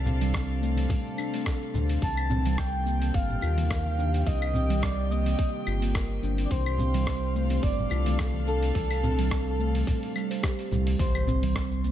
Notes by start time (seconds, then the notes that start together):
Already playing: C2 C3 C4 D4 A4 F5
0.06 C4, low conga, cabasa
0.21 G3, open hi-hat, high conga, cabasa
0.34 kick, cross-stick, open hi-hat, cabasa
0.50 cabasa
0.62 A3, cabasa
0.76 C4, open hi-hat, muted conga, high conga, cabasa
0.89 kick, open hi-hat, low conga, cabasa
1.06 cabasa
1.18 D4, cabasa, claves
1.33 A3, open hi-hat, cabasa
1.46 A4, kick, cross-stick, open hi-hat, cabasa
1.62 cabasa
1.74 D2 D4, low conga, cabasa
1.89 open hi-hat, cabasa
2.02 C2 A5, kick, open hi-hat, high conga, cabasa
2.11 D#3
2.17 cabasa, claves
2.30 C4, low conga, cabasa
2.42 G3 G5, open hi-hat
2.46 high conga, cabasa
2.58 G4 G5, kick, cross-stick, open hi-hat, cabasa
2.74 cabasa
2.86 A#3, cabasa
3.01 C4, open hi-hat, muted conga, cabasa
3.14 G1 F5, kick, open hi-hat, cabasa
3.30 low conga, cabasa
3.41 D#2 F4, muted conga, cabasa, claves
3.57 A#3, open hi-hat, high conga, cabasa
3.70 A#4, kick, cross-stick, open hi-hat, cabasa
3.86 high conga, cabasa
3.98 D4, cabasa
4.14 open hi-hat, cabasa
4.26 C2 D#5, kick, open hi-hat, high conga, cabasa
4.42 cabasa, claves
4.54 C4, low conga, cabasa
4.70 G3, open hi-hat, high conga, cabasa
4.82 C4 D5, kick, cross-stick, open hi-hat, cabasa
4.99 cabasa
5.11 A#3 D#5, cabasa
5.25 C4, open hi-hat, muted conga, high conga, cabasa
5.39 kick, open hi-hat, cabasa
5.54 cabasa
5.67 G1 F4, cabasa, claves
5.82 A#3, open hi-hat, cabasa
5.95 A#4, kick, cross-stick, open hi-hat, cabasa
6.11 cabasa
6.23 G1 D4, cabasa
6.38 open hi-hat, cabasa
6.45 D5
6.51 C2 C5, kick, open hi-hat, high conga, cabasa
6.65 F5, cabasa, claves
6.78 C4, low conga, cabasa
6.94 G3 D4, open hi-hat, high conga, cabasa
7.07 kick, cross-stick, open hi-hat, cabasa
7.22 A4, cabasa
7.35 A3, cabasa
7.50 C4, open hi-hat, muted conga, cabasa
7.63 G1 D5, kick, open hi-hat, cabasa
7.79 low conga, cabasa
7.90 C2 F4, muted conga, cabasa, claves
8.06 A3, open hi-hat, high conga, cabasa
8.19 A4, kick, cross-stick, open hi-hat, cabasa
8.34 high conga, cabasa
8.47 D4 A4, cabasa
8.62 open hi-hat, cabasa
8.75 C2, kick, open hi-hat, high conga, cabasa
8.90 open hi-hat, cabasa, claves
9.03 C4, low conga, cabasa
9.18 G3, open hi-hat, high conga, cabasa
9.31 kick, cross-stick, open hi-hat, cabasa
9.47 cabasa
9.59 A3, cabasa
9.74 C4, open hi-hat, muted conga, high conga, cabasa
9.87 kick, open hi-hat, low conga, cabasa
10.03 open hi-hat, cabasa
10.15 G3, cabasa, claves
10.31 C5, open hi-hat, cabasa
10.43 G4, kick, cross-stick, open hi-hat, cabasa
10.59 open hi-hat, cabasa
10.71 C2 G3, low conga, cabasa
10.87 open hi-hat, muted conga, cabasa
10.99 C2 C5, kick, open hi-hat, impact, high conga, cabasa
11.15 cabasa, claves
11.27 C4, muted conga, low conga, cabasa
11.43 G3, open hi-hat, high conga, cabasa
11.56 kick, cross-stick, open hi-hat, cabasa
11.71 cabasa
11.84 A#3, cabasa